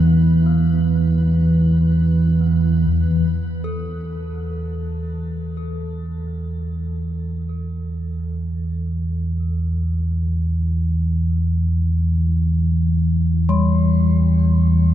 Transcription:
Already playing: E2 E3 B3 B4
2.90 E2 E3
3.64 A4
13.49 G3

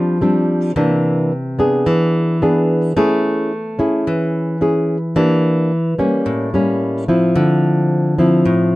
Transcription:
Already playing: F3 G3 C4 D4
0.21 G3 C4 D4
0.76 C3 E3 A#3 D4
1.59 B3 D4 G#4
1.86 E3
2.42 B3 D4 G#4
2.97 A3 C#4 E4 G#4
3.79 C#4 E4 G#4
4.07 E3
4.61 C#4 E4 G#4
5.16 E3 A#3 D4 G4
5.99 G3 A#3 C#4
6.26 A2
6.54 G3 A#3 C#4
7.08 F3 C4 E4
7.36 D3
8.18 F3 C4 E4
8.45 A2

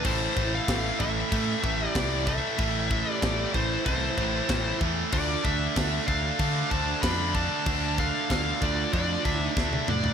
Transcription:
0.04 A1 A2 E3 A3 E4 C5, kick, crash
0.37 A1 A2 E3 A3, kick, crash
0.54 A4 F5
0.68 A1 A2 E3 A3, kick, snare, crash
1.00 A1 A2 E3 A3 A4 E5, kick, crash
1.32 A2 E3 A3, kick, crash
1.64 A1 A2 E3 A3, kick, crash
1.84 G4
1.89 D5
1.95 C2 A2 E3 A3, kick, snare, crash
2.26 A2 E3 A3 A4 E5, kick, crash
2.58 A1 A2 E3 A3, kick, crash
2.91 A2 E3 A3, kick, crash
3.11 G4 D5
3.22 A1 A2 E3 A3, kick, snare, crash
3.54 A1 A2 E3 A3 E4 C5, kick, crash
3.85 C2 A2 E3 A3 E4 C5, kick, crash
4.17 A1 A2 E3 A3, kick, crash
4.48 A1 A2 E3 A3, kick, snare, crash
4.81 E2 A2 E3 A3, kick, crash
5.12 D2 D3 A3 D4 F4 D5, kick, crash
5.43 D2 D3 A3 D4 A4 E5, kick, crash
5.76 D2 D3 A3 D4, kick, snare, crash
6.06 D2 D3 A3 D4 A4 F5, kick, crash
6.39 D3 A3 D4, kick, crash
6.70 D2 D3 A3 D4 C5 A5, kick, crash
7.02 F2 D3 A3 D4 D5 B5, kick, snare, crash
7.34 D3 A3 D4 D5 A5, kick, crash
7.66 D2 D3 A3 D4, kick, crash
7.98 D3 A3 D4 A4 F5, kick, crash
8.30 D2 D3 A3 D4 A4 F5, kick, snare, crash
8.61 D2 D3 A3 D4 F4 D5, kick, crash
8.93 F2 D3 A3 D4 F4 D5, kick, crash
9.25 D2 D3 A3 D4 E5, kick, crash
9.38 D#4 C5
9.56 D2 D3 A3 D4, kick, snare
9.73 high tom
9.88 A2 D3 A3 D4 D5, mid tom
10.04 floor tom

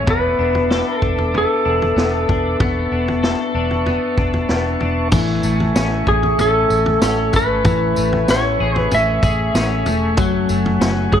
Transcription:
Already playing: E3 C#4 G#4 E5
0.07 E1 B3 B4 A5 D6, kick, floor tom
0.39 E1 D4
0.55 floor tom
0.71 A4, snare
0.98 E1 A4, kick
1.03 D4
1.18 floor tom
1.34 B3 A4, floor tom
1.65 E1 D4
1.82 floor tom
1.96 E1 B3, snare
2.29 E1 D4, kick, floor tom
2.60 E1 B3 C#6, kick, floor tom
2.91 E1 D4
3.08 floor tom
3.23 A4, snare
3.54 E1 D4
3.71 floor tom
3.86 B3, floor tom
4.18 E1 D4, kick
4.33 floor tom
4.49 E1 B3, snare
4.80 E1 D4, floor tom
5.12 A1 E3 A3 E5 G#5 C#6, kick, floor tom, crash, tambourine
5.43 A1 A3, tambourine
5.60 floor tom
5.75 A1 C#4, snare, tambourine
6.07 A1 G#4, kick
6.23 floor tom
6.38 A1 C#4 A4, floor tom, tambourine
6.70 A1, tambourine
6.86 floor tom
7.02 A1 C#4, snare, tambourine
7.33 G#1 A3 B4, kick, floor tom, tambourine
7.65 A1 E3 G#5, kick, floor tom, tambourine
7.96 A1 A3, tambourine
8.12 floor tom
8.28 A1 C#4 C#5, snare, tambourine
8.60 A1 G#4
8.76 B4, floor tom
8.91 A1 C#4 E5, floor tom, tambourine
9.23 A1 G#4, kick, tambourine
9.54 A1 C#4, snare, tambourine
9.86 E1 A3, floor tom, tambourine
10.17 F#1 F#3 F#5 G#5, kick, floor tom, tambourine
10.49 F#1 A3, tambourine
10.66 floor tom
10.81 F#1 C#4, snare, tambourine
11.12 F#1 G#4, kick

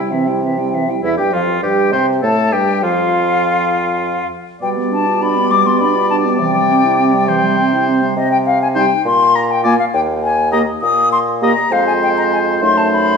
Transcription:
Already playing: G3 E4 G5
0.11 C3 E3 C4 E5
0.27 G3 E4 G5
0.43 E3 C4 E5
0.58 G3 E4 G5
0.73 E3 C4 E5
0.88 G3 E4 G5
1.03 E2 E3 E4 E5
1.17 G2 G3 G4 G5
1.32 F2 F3 F4 F5
1.63 G2 G3 G4 G5
1.92 C3 C4 C5 C6
2.22 A2 A3 A4 A5
2.52 G2 G3 G4 G5
2.83 F2 F3 F4 F5
4.61 B2 G3 D5 G5
4.77 B3
4.91 D4 A5
5.07 F4
5.21 D4 B5
5.36 B3
5.51 G3 D6
5.66 B3 C6
5.80 D4 B5
5.95 F4
6.10 D4 A5
6.25 B3
6.39 C3 E3 G5
6.55 G3
6.70 C4
6.85 E4
6.99 C4
7.13 G3
7.28 E3 C5
7.43 G3
7.58 C4
7.73 E4
7.88 C4
8.02 G3
8.16 C3 D#5
8.31 G5
8.46 F5
8.62 G#5
8.75 G3 D#4 C5 G5
9.05 A#2 C6
9.35 A#5
9.51 G5
9.64 A#3 F4 D5 G#5
9.79 F5
9.93 D#2 G5
10.23 G#5
10.52 A#3 G4 D#5 A#5
10.81 A#2 D#6
11.12 C6
11.42 A#3 G4 D#5 A#5
11.71 F2 G#3 F4 C5 F5
11.87 G#5
12.03 G5
12.17 A#5
12.32 G#5
12.61 F#2 A3 D#4 C5 C6
12.77 A5
12.92 B5

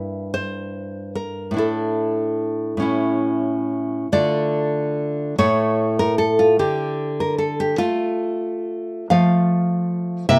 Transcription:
Already playing: G2 A#3 E4 E5
0.34 C5
1.15 A#4
1.51 A2 D4
1.57 E4 A4
2.77 A2 C#4
2.82 E4
4.12 D3 A3 F4 D5
5.38 A2 A3 E4 C#5
5.99 A#4
6.18 A4
6.39 F4
6.59 D3 G4
7.20 A#4
7.38 A4
7.60 G4
7.78 A3 F4
9.10 F3 A3 F4 F5
10.29 C3 A#3 E4 E5

